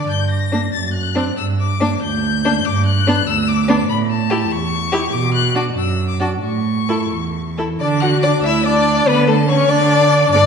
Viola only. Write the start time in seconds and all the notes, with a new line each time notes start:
Already playing: D4
0.53 A#3
1.16 C4
1.80 A#3
2.45 A#3
3.07 B3
3.69 B3
4.31 E4
4.93 E4
5.55 D4
6.20 D4
6.89 E4
7.58 E4
7.80 D4
8.02 F#4
8.24 D4
8.46 E4
8.67 D4
9.08 B3
9.28 A3
9.49 C#4
9.70 D4
10.33 D4